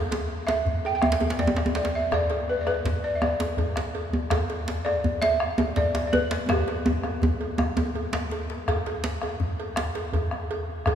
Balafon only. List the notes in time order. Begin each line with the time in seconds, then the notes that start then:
0.47 E5
0.86 G5
0.95 G5
1.02 E5
1.39 D5
1.76 D5
1.95 E5
2.14 D5
2.49 B4
2.61 D5
2.67 B4
3.04 D5
3.15 E5
3.22 D5
4.85 D5
5.22 E5
5.77 D5
6.07 D5
6.13 B4
6.49 G4